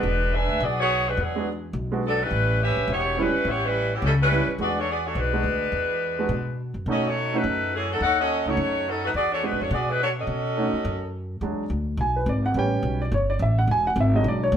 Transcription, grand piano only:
1.36 G#3 B3 D4 F#4
1.92 G#3 B3 D4 F#4
3.17 G3 B3 C#4 E4
4.31 G3 B3 C#4 E4
4.60 G#3 B3 D4 F#4
5.33 G#3 B3 D4 F#4
6.19 G#3 B3 D4 F#4
6.88 A3 C#4 D#4 F#4
7.33 A3 C#4 D#4 F#4
8.47 A3 C#4 D#4 F#4
9.43 G#3 B3 D4 F#4
10.57 A3 C#4 D#4 F#4
11.42 F#3 G#3 D4
12.01 G#5
12.16 B4
12.29 D5
12.46 F#5
12.56 G3 B3 C#4 G5
13.02 D5
13.14 C#5
13.30 D5
13.42 E5
13.59 F#5
13.71 G#5
13.87 F#5
14.01 E5
14.15 F#3 G#3 D4 D#5
14.28 D5
14.43 C#5

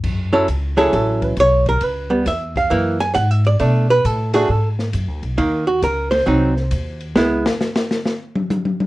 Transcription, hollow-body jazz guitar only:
0.33 F#3 C#4 E4 A4
0.77 F#3 C#4 E4 G#4 A4
0.94 A4
1.24 B4
1.40 C#5
1.69 A#4
1.84 B4
2.10 G3 B3
2.28 E5
2.57 F5
2.70 E3 A#3
3.00 G#5
3.14 F#5
3.31 E5
3.47 D5
3.60 A3 D4
3.90 B4
4.05 A4
4.34 A3 D4 F#4 G#4
4.51 A4
5.38 D#3 A#3
5.67 F#4
5.84 A#4
6.11 C5
6.26 F#3 C4 D#4
7.16 G#3 B3 E4

